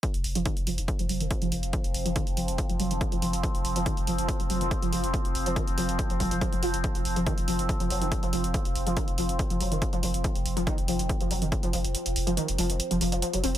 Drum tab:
HH |xxoxxxoxxxoxxxox|xxoxxxoxxxoxxxox|xxoxxxoxxxoxxxox|xxoxxxoxxxoxxxox|
BD |o---o---o---o---|o---o---o---o---|o---o---o---o---|o---o---o-o-o---|

HH |xxoxxxoxxxoxxxox|xxoxxxoxxxoxxxox|xxoxxxoxxxoxxxox|xxoxxxoxxxoxxxox|
BD |o---o---o---o---|o---o---o---o---|o---o---o---o---|----------------|